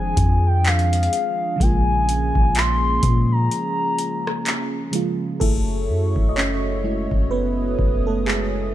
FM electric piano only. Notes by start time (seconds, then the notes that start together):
Already playing: D#3 F3 G#3 C4 F4
1.56 C#3 F3 G#3
1.62 A#3 F4
4.91 C#3 F3 G#3 A#3 F4
5.40 A3 E4 G#4 A4
6.29 D#5
6.36 C#4 C#5
6.84 G#3 A3 E4
7.31 B3 B4
8.07 A3 A4
8.27 G#3 G#4